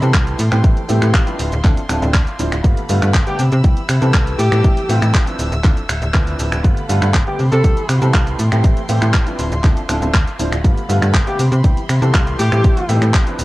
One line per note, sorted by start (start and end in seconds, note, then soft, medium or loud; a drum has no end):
0.00 0.12 C3 medium
0.00 0.38 E3 medium
0.00 0.38 G3 medium
0.00 0.38 B3 medium
0.00 0.38 C4 medium
0.00 0.38 A4 loud
0.00 0.38 E5 medium
0.00 0.38 B5 medium
0.00 2.61 C6 medium
0.00 closed hi-hat soft
0.00 shaker soft
0.14 0.35 C2 loud
0.14 kick loud
0.14 clap loud
0.14 closed hi-hat medium
0.14 shaker soft
0.27 closed hi-hat medium
0.27 shaker soft
0.39 0.50 A2 loud
0.39 1.38 A4 medium
0.39 1.38 G5 medium
0.39 open hi-hat loud
0.39 shaker medium
0.51 0.62 A2 medium
0.51 0.62 E3 medium
0.51 0.62 G3 medium
0.51 0.62 A3 medium
0.51 0.62 C4 medium
0.51 0.62 G4 medium
0.51 finger snap medium
0.51 shaker soft
0.63 0.75 A1 loud
0.63 0.78 E3 medium
0.63 0.78 G3 medium
0.63 0.79 A3 medium
0.63 0.79 C4 medium
0.63 0.79 E4 loud
0.63 kick loud
0.63 closed hi-hat medium
0.63 shaker soft
0.77 closed hi-hat medium
0.77 shaker soft
0.89 1.00 A2 medium
0.89 1.24 E3 loud
0.89 1.24 G3 medium
0.89 1.24 A3 medium
0.89 1.24 C4 medium
0.89 1.24 G4 loud
0.89 open hi-hat loud
0.89 shaker medium
1.02 1.12 A2 medium
1.02 finger snap medium
1.02 closed hi-hat soft
1.02 shaker soft
1.14 1.25 A1 medium
1.14 kick loud
1.14 clap loud
1.14 closed hi-hat medium
1.14 shaker soft
1.26 1.50 F3 medium
1.26 1.50 C4 medium
1.26 1.50 D4 medium
1.26 1.50 E4 medium
1.26 1.50 B4 medium
1.26 closed hi-hat medium
1.26 shaker soft
1.39 1.50 D1 medium
1.39 2.63 F4 medium
1.39 2.63 E5 medium
1.39 open hi-hat loud
1.39 shaker medium
1.52 1.63 D1 loud
1.52 closed hi-hat soft
1.52 shaker soft
1.64 1.75 D2 loud
1.64 1.79 F3 medium
1.64 1.79 C4 medium
1.64 1.79 D4 medium
1.64 1.79 E4 medium
1.64 1.79 A4 loud
1.64 kick loud
1.64 clap medium
1.64 closed hi-hat medium
1.64 shaker soft
1.77 1.87 D1 soft
1.77 closed hi-hat medium
1.77 shaker soft
1.89 2.00 D1 medium
1.89 2.00 F3 medium
1.89 2.00 C4 medium
1.89 2.00 D4 medium
1.89 2.00 E4 medium
1.89 2.00 A4 medium
1.89 finger snap medium
1.89 open hi-hat loud
1.89 shaker medium
2.02 2.16 D1 loud
2.02 2.16 F3 medium
2.02 2.16 C4 medium
2.02 2.16 D4 medium
2.02 2.16 E4 medium
2.02 2.16 A4 medium
2.02 closed hi-hat soft
2.02 shaker soft
2.14 2.25 D2 medium
2.14 kick loud
2.14 clap loud
2.14 open hi-hat medium
2.14 shaker soft
2.27 closed hi-hat soft
2.27 shaker soft
2.39 2.50 D1 medium
2.39 2.54 F3 medium
2.39 2.54 C4 medium
2.39 2.54 D4 medium
2.39 2.54 E4 medium
2.39 2.54 C5 medium
2.39 open hi-hat loud
2.39 shaker medium
2.52 2.62 D1 medium
2.52 finger snap medium
2.52 closed hi-hat soft
2.52 shaker soft
2.64 2.75 G1 loud
2.64 2.79 D3 medium
2.64 2.79 G3 medium
2.64 2.79 A3 medium
2.64 2.79 B3 medium
2.64 2.79 F4 medium
2.64 3.38 A4 medium
2.64 3.38 F5 medium
2.64 3.38 B5 medium
2.64 kick loud
2.64 closed hi-hat medium
2.64 shaker soft
2.77 closed hi-hat medium
2.77 shaker soft
2.89 3.00 G2 medium
2.89 3.12 D3 medium
2.89 3.12 G3 medium
2.89 3.12 A3 medium
2.89 3.12 B3 medium
2.89 3.12 F4 loud
2.89 open hi-hat loud
2.89 shaker medium
3.02 3.12 G2 loud
3.02 finger snap medium
3.02 closed hi-hat soft
3.02 shaker soft
3.14 3.25 G1 medium
3.14 kick loud
3.14 clap loud
3.14 closed hi-hat medium
3.14 shaker soft
3.27 3.38 D3 medium
3.27 3.38 G3 medium
3.27 3.38 A3 medium
3.27 3.38 B3 medium
3.27 3.44 G4 medium
3.27 3.38 G4 loud
3.27 closed hi-hat medium
3.27 shaker soft
3.39 3.50 C3 medium
3.39 4.38 E5 medium
3.39 4.38 B5 medium
3.39 6.61 E6 medium
3.39 open hi-hat loud
3.39 shaker medium
3.52 3.62 C3 loud
3.52 closed hi-hat soft
3.52 shaker soft
3.64 3.75 C2 medium
3.64 3.79 E3 medium
3.64 3.79 G3 medium
3.64 3.79 B3 medium
3.64 3.79 C4 medium
3.64 3.79 G4 medium
3.64 kick loud
3.64 closed hi-hat medium
3.64 shaker soft
3.77 closed hi-hat medium
3.77 shaker soft
3.89 4.00 C3 medium
3.89 finger snap medium
3.89 open hi-hat loud
3.89 shaker medium
4.01 4.12 C3 medium
4.01 4.37 E3 medium
4.01 4.38 G3 medium
4.01 4.38 B3 medium
4.01 4.38 C4 medium
4.01 4.38 A4 medium
4.01 closed hi-hat soft
4.01 shaker soft
4.14 4.35 C2 loud
4.14 kick loud
4.14 clap loud
4.14 closed hi-hat medium
4.14 shaker soft
4.27 closed hi-hat soft
4.27 shaker soft
4.39 4.50 A2 loud
4.39 5.09 G4 loud
4.39 5.38 A4 medium
4.39 5.38 G5 medium
4.39 open hi-hat loud
4.39 shaker medium
4.52 4.62 A2 medium
4.52 4.62 E3 medium
4.52 4.62 G3 medium
4.52 4.62 A3 medium
4.52 4.62 C4 medium
4.52 4.63 G4 medium
4.52 finger snap medium
4.52 shaker soft
4.64 4.75 A1 loud
4.64 4.79 E3 medium
4.64 4.79 G3 medium
4.64 4.79 A3 medium
4.64 4.79 C4 medium
4.64 4.79 E4 loud
4.64 kick loud
4.64 closed hi-hat medium
4.64 shaker soft
4.77 closed hi-hat medium
4.77 shaker soft
4.89 5.00 A2 medium
4.89 5.24 E3 loud
4.89 5.24 G3 medium
4.89 5.24 A3 medium
4.89 5.24 C4 medium
4.89 5.24 G4 loud
4.89 open hi-hat loud
4.89 shaker medium
5.02 5.12 A2 loud
5.02 finger snap medium
5.02 closed hi-hat soft
5.02 shaker soft
5.14 5.25 A1 medium
5.14 kick loud
5.14 clap loud
5.14 closed hi-hat medium
5.14 shaker soft
5.27 5.50 F3 medium
5.27 5.50 C4 medium
5.27 5.50 D4 medium
5.27 5.50 E4 medium
5.27 5.50 B4 medium
5.27 closed hi-hat medium
5.27 shaker soft
5.39 5.50 D1 medium
5.39 6.63 E5 medium
5.39 open hi-hat loud
5.39 shaker medium
5.52 5.62 D1 loud
5.52 closed hi-hat soft
5.52 shaker soft
5.63 5.75 D2 medium
5.63 5.78 F3 medium
5.63 5.79 C4 medium
5.63 5.79 D4 medium
5.63 5.79 E4 medium
5.63 5.79 A4 loud
5.63 kick loud
5.63 clap medium
5.63 closed hi-hat medium
5.63 shaker soft
5.77 5.87 D1 soft
5.77 closed hi-hat medium
5.77 shaker soft
5.89 6.00 D1 medium
5.89 finger snap medium
5.89 open hi-hat loud
5.89 shaker medium
6.02 6.12 D1 medium
6.02 closed hi-hat soft
6.02 shaker soft
6.14 6.35 D2 loud
6.14 6.61 F3 loud
6.14 6.61 C4 medium
6.14 6.61 D4 medium
6.14 6.61 E4 medium
6.14 6.61 B4 loud
6.14 kick loud
6.14 clap loud
6.14 open hi-hat medium
6.14 shaker soft
6.27 closed hi-hat medium
6.27 shaker soft
6.39 6.50 D1 loud
6.39 open hi-hat loud
6.39 shaker medium
6.52 6.62 D1 medium
6.52 finger snap medium
6.52 shaker soft
6.64 6.75 G1 loud
6.64 6.78 D3 medium
6.64 6.79 G3 medium
6.64 6.79 A3 medium
6.64 6.79 B3 medium
6.64 6.79 F4 medium
6.64 7.38 A4 medium
6.64 7.38 F5 medium
6.64 7.38 B5 medium
6.64 kick loud
6.64 closed hi-hat medium
6.64 shaker soft
6.77 closed hi-hat medium
6.77 shaker soft
6.89 7.00 G2 medium
6.89 7.12 D3 medium
6.89 7.12 G3 medium
6.89 7.12 A3 medium
6.89 7.12 B3 medium
6.89 7.12 F4 loud
6.89 open hi-hat loud
6.89 shaker medium
7.02 7.12 G2 loud
7.02 finger snap medium
7.02 closed hi-hat soft
7.02 shaker soft
7.14 7.25 G1 medium
7.14 kick loud
7.14 clap loud
7.14 closed hi-hat medium
7.14 shaker soft
7.27 7.38 D3 medium
7.27 7.38 G3 medium
7.27 7.38 A3 medium
7.27 7.38 B3 medium
7.27 7.44 G4 loud
7.27 7.38 G4 loud
7.27 closed hi-hat medium
7.27 shaker soft
7.39 7.50 C3 medium
7.39 8.38 E5 medium
7.39 8.38 B5 medium
7.39 10.61 C6 medium
7.39 open hi-hat loud
7.39 shaker medium
7.52 7.62 C3 loud
7.52 8.02 A4 loud
7.52 closed hi-hat soft
7.52 shaker soft
7.64 7.75 C2 medium
7.64 7.79 E3 medium
7.64 7.79 G3 medium
7.64 7.79 B3 medium
7.64 7.79 C4 medium
7.64 7.79 G4 medium
7.64 kick loud
7.64 closed hi-hat medium
7.64 shaker soft
7.77 closed hi-hat medium
7.77 shaker soft
7.89 8.00 C3 medium
7.89 finger snap medium
7.89 open hi-hat loud
7.89 shaker medium
8.02 8.12 C3 medium
8.02 8.38 E3 medium
8.02 8.38 G3 medium
8.02 8.38 B3 medium
8.02 8.38 C4 medium
8.02 8.38 A4 loud
8.02 closed hi-hat soft
8.02 shaker soft
8.14 8.35 C2 loud
8.14 kick loud
8.14 clap loud
8.14 closed hi-hat medium
8.14 shaker soft
8.27 closed hi-hat medium
8.27 shaker soft
8.39 8.50 A2 loud
8.39 9.38 A4 medium
8.39 9.38 G5 medium
8.39 open hi-hat loud
8.39 shaker medium
8.52 8.62 A2 medium
8.52 8.62 E3 medium
8.52 8.62 G3 medium
8.52 8.62 A3 medium
8.52 8.62 C4 medium
8.52 8.63 G4 medium
8.52 finger snap medium
8.52 shaker soft
8.63 8.75 A1 loud
8.63 8.78 E3 medium
8.63 8.79 G3 medium
8.63 8.79 A3 medium
8.63 8.79 C4 medium
8.63 8.79 E4 loud
8.63 kick loud
8.63 closed hi-hat medium
8.63 shaker soft
8.77 closed hi-hat medium
8.77 shaker soft
8.89 9.00 A2 medium
8.89 9.24 E3 loud
8.89 9.24 G3 medium
8.89 9.24 A3 medium
8.89 9.24 C4 medium
8.89 9.24 G4 loud
8.89 open hi-hat loud
8.89 shaker medium
9.02 9.12 A2 loud
9.02 finger snap medium
9.02 closed hi-hat soft
9.02 shaker soft
9.14 9.25 A1 medium
9.14 kick loud
9.14 clap loud
9.14 closed hi-hat medium
9.14 shaker soft
9.27 9.50 F3 medium
9.27 9.50 C4 medium
9.27 9.50 D4 medium
9.27 9.50 E4 medium
9.27 9.50 B4 medium
9.27 closed hi-hat medium
9.27 shaker soft
9.39 9.50 D1 medium
9.39 10.63 F4 medium
9.39 10.63 E5 medium
9.39 open hi-hat loud
9.39 shaker medium
9.52 9.62 D1 loud
9.52 closed hi-hat soft
9.52 shaker soft
9.64 9.75 D2 medium
9.64 9.79 F3 medium
9.64 9.79 C4 medium
9.64 9.79 D4 medium
9.64 9.79 E4 medium
9.64 9.79 A4 loud
9.64 kick loud
9.64 clap medium
9.64 closed hi-hat medium
9.64 shaker soft
9.77 9.87 D1 soft
9.77 closed hi-hat medium
9.77 shaker soft
9.89 10.00 D1 medium
9.89 10.00 F3 medium
9.89 10.00 C4 medium
9.89 10.00 D4 medium
9.89 10.00 E4 medium
9.89 10.00 A4 medium
9.89 finger snap medium
9.89 open hi-hat loud
9.89 shaker medium
10.02 10.12 D1 medium
10.02 10.16 F3 medium
10.02 10.16 C4 medium
10.02 10.16 D4 medium
10.02 10.16 E4 medium
10.02 10.16 A4 medium
10.02 closed hi-hat soft
10.02 shaker soft
10.14 10.25 D2 medium
10.14 kick loud
10.14 clap loud
10.14 open hi-hat medium
10.14 shaker soft
10.27 closed hi-hat medium
10.27 shaker soft
10.39 10.50 D1 medium
10.39 10.54 F3 medium
10.39 10.54 C4 medium
10.39 10.54 D4 medium
10.39 10.54 E4 medium
10.39 10.54 C5 medium
10.39 open hi-hat loud
10.39 shaker medium
10.52 10.62 D1 medium
10.52 finger snap medium
10.52 closed hi-hat soft
10.52 shaker soft
10.64 10.75 G1 loud
10.64 10.79 D3 medium
10.64 10.79 G3 medium
10.64 10.79 A3 medium
10.64 10.79 B3 medium
10.64 10.79 F4 medium
10.64 11.39 A4 medium
10.64 11.39 F5 medium
10.64 11.38 B5 medium
10.64 kick loud
10.64 closed hi-hat medium
10.64 shaker soft
10.77 closed hi-hat medium
10.77 shaker soft
10.89 11.00 G2 medium
10.89 11.12 D3 medium
10.89 11.12 G3 medium
10.89 11.12 A3 medium
10.89 11.12 B3 medium
10.89 11.12 F4 loud
10.89 open hi-hat loud
10.89 shaker medium
11.02 11.12 G2 loud
11.02 finger snap medium
11.02 closed hi-hat soft
11.02 shaker soft
11.14 11.25 G1 medium
11.14 kick loud
11.14 clap loud
11.14 closed hi-hat medium
11.14 shaker soft
11.27 11.38 D3 medium
11.27 11.38 G3 medium
11.27 11.38 A3 medium
11.27 11.38 B3 medium
11.27 11.44 G4 medium
11.27 11.38 G4 loud
11.27 closed hi-hat medium
11.27 shaker soft
11.39 11.50 C3 medium
11.39 12.38 E5 medium
11.39 12.38 B5 medium
11.39 13.37 C6 medium
11.39 open hi-hat loud
11.39 shaker medium
11.52 11.62 C3 loud
11.52 closed hi-hat soft
11.52 shaker soft
11.64 11.75 C2 medium
11.64 11.79 E3 medium
11.64 11.79 G3 medium
11.64 11.79 B3 medium
11.64 11.79 C4 medium
11.64 11.79 G4 medium
11.64 kick loud
11.64 closed hi-hat medium
11.64 shaker soft
11.77 closed hi-hat medium
11.77 shaker soft
11.89 12.00 C3 medium
11.89 finger snap medium
11.89 open hi-hat loud
11.89 shaker medium
12.02 12.12 C3 medium
12.02 12.38 E3 medium
12.02 12.38 G3 medium
12.02 12.38 B3 medium
12.02 12.38 C4 medium
12.02 12.38 A4 loud
12.02 closed hi-hat soft
12.02 shaker soft
12.14 12.35 C2 loud
12.14 kick loud
12.14 clap loud
12.14 closed hi-hat medium
12.14 shaker soft
12.27 closed hi-hat medium
12.27 shaker soft
12.39 12.50 A2 loud
12.39 13.09 G4 loud
12.39 13.38 A4 medium
12.39 13.38 G5 medium
12.39 open hi-hat loud
12.39 shaker medium
12.52 12.62 A2 medium
12.52 12.62 E3 medium
12.52 12.62 G3 medium
12.52 12.62 A3 medium
12.52 12.62 C4 medium
12.52 12.63 G4 medium
12.52 finger snap medium
12.52 shaker soft
12.64 12.75 A1 loud
12.64 12.79 E3 medium
12.64 12.79 G3 medium
12.64 12.79 A3 medium
12.64 12.79 C4 medium
12.64 12.79 E4 loud
12.64 kick loud
12.64 closed hi-hat medium
12.64 shaker soft
12.77 closed hi-hat medium
12.77 shaker soft
12.89 13.00 A2 medium
12.89 13.24 E3 loud
12.89 13.24 G3 medium
12.89 13.24 A3 medium
12.89 13.24 C4 medium
12.89 13.24 G4 loud
12.89 open hi-hat loud
12.89 shaker medium
13.02 13.12 A2 loud
13.02 finger snap medium
13.02 closed hi-hat soft
13.02 shaker soft
13.14 13.25 A1 medium
13.14 kick loud
13.14 clap loud
13.14 closed hi-hat medium
13.14 shaker soft
13.27 13.45 F3 medium
13.27 13.45 C4 medium
13.27 13.45 D4 medium
13.27 13.45 E4 medium
13.27 13.45 B4 medium
13.27 closed hi-hat medium
13.27 shaker soft
13.39 13.45 D1 medium
13.39 13.45 E5 medium
13.39 open hi-hat loud
13.39 shaker medium